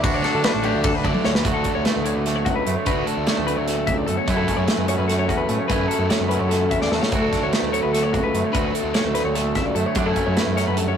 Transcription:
Already playing: clean electric guitar A3
0.02 clean electric guitar D2 F#4 B4, picked electric bass D2, trumpet D4, kick, ride
0.14 clean electric guitar C#5
0.23 overdriven electric guitar D3 F#3 A3 D4, clean electric guitar D4 A4, snare, ride
0.35 picked electric bass D3
0.43 clean electric guitar A3 B4, snare, ride
0.54 picked electric bass A1, clean electric guitar A4
0.62 clean electric guitar D3 G4, overdriven electric guitar D3 F#3 A3 D4, ride
0.74 picked electric bass D2
0.84 clean electric guitar D4 A4, kick, ride
0.95 clean electric guitar B4
1.04 clean electric guitar A2 D5, picked electric bass D3, overdriven electric guitar D3 F#3 A3 D4, kick, ride
1.14 high tom
1.25 picked electric bass D2, clean electric guitar A3 C#5, snare
1.35 clean electric guitar B4, snare
1.43 picked electric bass D2, clean electric guitar D2 F#4, overdriven electric guitar D3 F#3 A3 D4, kick, closed hi-hat
1.54 clean electric guitar A4
1.64 kick, closed hi-hat
1.75 picked electric bass D2, clean electric guitar C#5
1.85 clean electric guitar A3 B4, snare, closed hi-hat
1.96 picked electric bass D2
2.05 clean electric guitar D3 C#5, closed hi-hat
2.15 picked electric bass D2, clean electric guitar B4
2.26 clean electric guitar A3 A4, snare, closed hi-hat
2.36 clean electric guitar C#5
2.45 picked electric bass C#2, clean electric guitar F#4, kick, closed hi-hat
2.56 clean electric guitar B4
2.66 picked electric bass F#2, clean electric guitar A2 A3, closed hi-hat
2.75 clean electric guitar C#5
2.85 clean electric guitar D2 F#4 B4, picked electric bass D2, overdriven electric guitar D3 F#3 A3, kick, closed hi-hat
2.90 overdriven electric guitar D4
3.07 clean electric guitar A4, closed hi-hat
3.17 picked electric bass D2
3.27 clean electric guitar A3 C#5, snare, closed hi-hat
3.37 picked electric bass D2, clean electric guitar A4
3.47 clean electric guitar D3 B4, closed hi-hat
3.57 picked electric bass D2, clean electric guitar C#5
3.66 clean electric guitar A4, snare, closed hi-hat
3.87 picked electric bass C#2, clean electric guitar D2 E5, kick, closed hi-hat
3.97 clean electric guitar D5
4.06 clean electric guitar E2 A4, picked electric bass F#2, closed hi-hat
4.17 clean electric guitar C#5
4.26 overdriven electric guitar F#2 C#3 F#3 A3 C#4, picked electric bass F#2, clean electric guitar F#2, kick, closed hi-hat
4.30 clean electric guitar E4
4.37 clean electric guitar A4
4.48 clean electric guitar C#4, kick, closed hi-hat
4.57 picked electric bass F#2, clean electric guitar C#5
4.67 clean electric guitar A3 B4, snare, closed hi-hat
4.78 picked electric bass F#2
4.88 clean electric guitar F#3 C#4 C#5, closed hi-hat
4.98 picked electric bass F#2, clean electric guitar B4
5.08 clean electric guitar A3 A4, snare, closed hi-hat
5.19 clean electric guitar C#5
5.28 picked electric bass E2, clean electric guitar C#4 F#4, kick, closed hi-hat
5.37 clean electric guitar B4
5.49 picked electric bass A2, clean electric guitar C#3 A3, closed hi-hat
5.59 clean electric guitar C#5
5.68 overdriven electric guitar F#2 C#3 F#3 A3, picked electric bass F#2, clean electric guitar F#2 B4, kick, closed hi-hat
5.72 overdriven electric guitar C#4, clean electric guitar E4
5.88 clean electric guitar C#4 A4, closed hi-hat
5.99 picked electric bass F#2
6.10 clean electric guitar A3 C#5, snare, closed hi-hat
6.19 picked electric bass F#2, clean electric guitar A4
6.29 clean electric guitar F#3 C#4 B4, closed hi-hat
6.39 picked electric bass F#2, clean electric guitar C#5
6.49 clean electric guitar A3 A4, snare, closed hi-hat
6.71 picked electric bass E2, clean electric guitar C#4 E5, kick, closed hi-hat
6.82 clean electric guitar D5, snare
6.91 picked electric bass E2, clean electric guitar C#3 A3 A4, snare
7.02 clean electric guitar C#5, snare
7.12 picked electric bass D2, clean electric guitar D2 F#4, overdriven electric guitar D3 F#3 A3 D4, kick, closed hi-hat
7.22 clean electric guitar A4
7.33 kick, snare, closed hi-hat
7.42 picked electric bass D2, clean electric guitar C#5
7.53 clean electric guitar A3 B4, snare, closed hi-hat
7.62 picked electric bass D2
7.72 clean electric guitar D3 C#5, closed hi-hat
7.83 picked electric bass D2, clean electric guitar B4
7.93 clean electric guitar A3 A4, snare, closed hi-hat
8.03 clean electric guitar C#5
8.13 picked electric bass C#2, clean electric guitar F#4, kick, closed hi-hat
8.23 clean electric guitar B4
8.34 picked electric bass F#2, clean electric guitar A2 A3, closed hi-hat
8.44 clean electric guitar C#5
8.52 clean electric guitar D2 F#4 B4, picked electric bass D2, overdriven electric guitar D3 F#3 A3, kick, closed hi-hat
8.57 overdriven electric guitar D4
8.74 clean electric guitar A4, closed hi-hat
8.83 picked electric bass D2
8.94 clean electric guitar A3 C#5, snare, closed hi-hat
9.04 picked electric bass D2, clean electric guitar A4
9.14 clean electric guitar D3 B4, snare, closed hi-hat
9.24 picked electric bass D2, clean electric guitar C#5
9.35 clean electric guitar A3 A4, snare, closed hi-hat
9.55 picked electric bass C#2, clean electric guitar E5, kick, snare, closed hi-hat
9.66 clean electric guitar D5
9.75 picked electric bass F#2, clean electric guitar A2 A3 A4, closed hi-hat
9.86 clean electric guitar C#5
9.95 overdriven electric guitar F#2 C#3 F#3 A3 C#4, clean electric guitar F#2 D4, picked electric bass F#2, kick, closed hi-hat
10.06 clean electric guitar E4 A4
10.16 clean electric guitar C#4, kick, closed hi-hat
10.26 picked electric bass F#2, clean electric guitar C#5
10.37 clean electric guitar A3 B4, snare, closed hi-hat
10.47 picked electric bass F#2
10.56 clean electric guitar F#3 C#4 C#5, snare, closed hi-hat
10.67 picked electric bass F#2, clean electric guitar B4
10.76 clean electric guitar G2 A4, closed hi-hat
10.88 clean electric guitar C#5

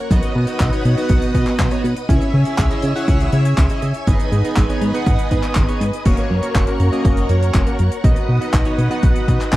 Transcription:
0.10 analog synth bass B1, analog polysynth B3 D#4 F#4 D#5, string machine B4 D#5 F#5 D#6, kick, closed hi-hat
0.23 closed hi-hat
0.35 analog synth bass B2
0.47 analog polysynth B3 D#4 F#4 D#5, closed hi-hat
0.60 analog synth bass B1, kick, clap, closed hi-hat
0.73 analog polysynth B3 D#4 F#4 C#5, closed hi-hat
0.85 analog synth bass B2, closed hi-hat
0.97 analog polysynth B3 D#4 F#4 F#5, closed hi-hat
1.09 analog synth bass B1, kick, closed hi-hat
1.22 closed hi-hat
1.34 analog synth bass B2, analog polysynth B3 D#4 F#4 D#5, kick, closed hi-hat
1.46 clap, closed hi-hat
1.59 analog synth bass B1, kick, clap, closed hi-hat
1.71 analog polysynth B3 D#4 F#4 C#5, closed hi-hat
1.84 analog synth bass B2, closed hi-hat
1.96 closed hi-hat
2.09 analog synth bass C#2, analog polysynth C#4 E4 G#4 E5, string machine C#5 E5 G#5 E6, kick, closed hi-hat
2.21 closed hi-hat
2.34 analog synth bass C#3
2.45 analog polysynth C#4 E4 G#4 E5, closed hi-hat
2.58 analog synth bass C#2, kick, clap, closed hi-hat
2.71 analog polysynth C#4 E4 G#4 D#5, closed hi-hat
2.82 analog synth bass C#3, closed hi-hat
2.96 analog polysynth C#4 E4 G#4 F#5, closed hi-hat
3.08 analog synth bass C#2, kick, closed hi-hat
3.20 closed hi-hat
3.32 analog synth bass C#3, analog polysynth C#4 E4 G#4 E5, closed hi-hat
3.45 closed hi-hat
3.57 analog synth bass C#2, kick, clap, closed hi-hat
3.70 analog polysynth C#4 E4 G#4 D#5, closed hi-hat
3.82 analog synth bass C#3, closed hi-hat
3.94 closed hi-hat
4.07 analog synth bass G#1, analog polysynth B3 D#4 G#4 D#5, string machine B4 D#5 D#6, kick, closed hi-hat
4.20 closed hi-hat
4.32 analog synth bass G#2, closed hi-hat
4.45 analog polysynth B3 D#4 G#4 D#5, closed hi-hat
4.56 analog synth bass G#1, kick, clap, closed hi-hat
4.69 analog polysynth B3 D#4 G#4 C#5, closed hi-hat
4.82 analog synth bass G#2, closed hi-hat
4.94 analog polysynth B3 D#4 G#4 F#5, closed hi-hat
5.06 analog synth bass G#1, kick, closed hi-hat
5.19 closed hi-hat
5.31 analog synth bass G#2, analog polysynth B3 D#4 G#4 D#5, kick, closed hi-hat
5.43 clap, closed hi-hat
5.55 analog synth bass G#1, kick, clap, closed hi-hat
5.68 analog polysynth B3 D#4 G#4 C#5, closed hi-hat
5.81 analog synth bass G#2, closed hi-hat
5.93 closed hi-hat
6.05 analog synth bass F#1, analog polysynth A#3 C#4 F#4 C#5, string machine A#4 C#5 F#5 C#6, kick, closed hi-hat, crash
6.17 closed hi-hat
6.30 analog synth bass F#2
6.43 analog polysynth A#3 C#4 F#4 C#5, closed hi-hat
6.55 analog synth bass F#1, kick, clap, closed hi-hat
6.67 analog polysynth A#3 C#4 F#4 A#4, closed hi-hat
6.80 analog synth bass F#2, closed hi-hat
6.92 analog polysynth A#3 C#4 F#4 D#5, closed hi-hat
7.05 analog synth bass F#1, kick, closed hi-hat
7.17 closed hi-hat
7.29 analog synth bass F#2, analog polysynth A#3 C#4 F#4 C#5, closed hi-hat
7.43 closed hi-hat
7.54 analog synth bass F#1, kick, clap, closed hi-hat
7.67 analog polysynth A#3 C#4 F#4 A#4, closed hi-hat
7.79 analog synth bass F#2, closed hi-hat
7.92 closed hi-hat
8.04 analog synth bass B1, analog polysynth B3 D#4 F#4 D#5, string machine B4 D#5 D#6, kick, closed hi-hat
8.16 closed hi-hat
8.29 analog synth bass B2
8.41 analog polysynth B3 D#4 F#4 D#5, closed hi-hat
8.54 analog synth bass B1, kick, clap, closed hi-hat
8.65 analog polysynth B3 D#4 F#4 C#5, closed hi-hat
8.78 analog synth bass B2, closed hi-hat
8.91 analog polysynth B3 D#4 F#4 F#5, closed hi-hat
9.03 analog synth bass B1, kick, closed hi-hat
9.16 closed hi-hat
9.28 analog synth bass B2, analog polysynth B3 D#4 F#4 D#5, kick, closed hi-hat
9.41 clap, closed hi-hat
9.52 analog synth bass B1, kick, clap, closed hi-hat

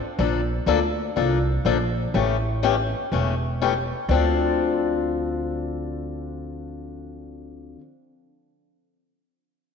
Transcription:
0.18 upright bass A#1, steel-string acoustic guitar D3 F3 A#3 D4 A4
0.66 upright bass D2, steel-string acoustic guitar D3 F3 A#3 D4 A4
1.16 upright bass C2, steel-string acoustic guitar D3 F3 A#3 D4 A4
1.65 upright bass A#1, steel-string acoustic guitar D3 F3 A#3 D4 A4
2.14 upright bass A1, steel-string acoustic guitar C#3 E3 A3 C#4 G4
2.63 steel-string acoustic guitar C#3 E3 A3 C#4 G4
3.12 upright bass E1, steel-string acoustic guitar C#3 E3 A3 C#4 G4
3.62 steel-string acoustic guitar C#3 E3 A3 C#4 G4
4.09 upright bass D2, steel-string acoustic guitar D3 F3 C4 D4
4.13 steel-string acoustic guitar A4

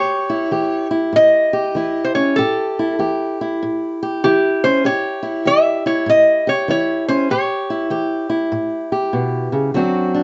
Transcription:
Already playing: steel-string acoustic guitar A2 G4, resonator guitar played with a steel bar C#5
0.30 steel-string acoustic guitar E4
0.51 steel-string acoustic guitar E3 G4
0.91 steel-string acoustic guitar E4
1.13 steel-string acoustic guitar A2, resonator guitar played with a steel bar D#5
1.53 steel-string acoustic guitar G4
1.75 steel-string acoustic guitar E3 E4
2.04 resonator guitar played with a steel bar C5
2.15 steel-string acoustic guitar C#4, resonator guitar played with a steel bar C#5
2.36 steel-string acoustic guitar A2 G4, resonator guitar played with a steel bar A4
2.79 steel-string acoustic guitar E4
2.99 steel-string acoustic guitar E3 G4
3.41 steel-string acoustic guitar E4
3.62 steel-string acoustic guitar A2
4.03 steel-string acoustic guitar G4
4.24 steel-string acoustic guitar E3 E4, resonator guitar played with a steel bar G4
4.64 steel-string acoustic guitar C#4, resonator guitar played with a steel bar C5
4.84 steel-string acoustic guitar A2 G4, resonator guitar played with a steel bar C#5
5.23 steel-string acoustic guitar E4
5.45 steel-string acoustic guitar E3 G4, resonator guitar played with a steel bar E5
5.86 steel-string acoustic guitar E4, resonator guitar played with a steel bar C#5
6.06 steel-string acoustic guitar A2, resonator guitar played with a steel bar D#5
6.47 steel-string acoustic guitar G4, resonator guitar played with a steel bar C#5
6.68 steel-string acoustic guitar E3 E4, resonator guitar played with a steel bar C#5
7.08 steel-string acoustic guitar C#4, resonator guitar played with a steel bar C5
7.30 steel-string acoustic guitar A2 G4, resonator guitar played with a steel bar C#5
7.70 steel-string acoustic guitar E4
7.90 steel-string acoustic guitar E3 G4
8.30 steel-string acoustic guitar E4
8.52 steel-string acoustic guitar A2
8.92 steel-string acoustic guitar G4
9.13 steel-string acoustic guitar B2
9.52 steel-string acoustic guitar C#3
9.74 steel-string acoustic guitar D3 F#3 C4 D4 F#4
10.14 steel-string acoustic guitar D4

